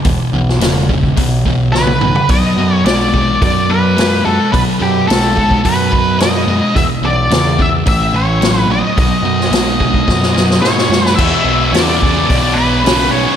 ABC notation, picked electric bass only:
X:1
M:4/4
L:1/16
Q:1/4=108
K:E
V:1 name="Picked electric bass" clef=bass
E,,, z B,,,2 E,,,4 B,,,6 B,,, z | B,,, z F,,2 B,,,4 F,,6 F,, z | B,,, z F,,2 B,,,4 F,,6 F,, z | E,, z B,,,2 E,,4 A,,,6 ^A,,, z |
B,,, z F,,2 B,,,4 F,,4 G,,2 F,,2 | E,, z B,,,2 E,,4 B,,,6 B,,, z |]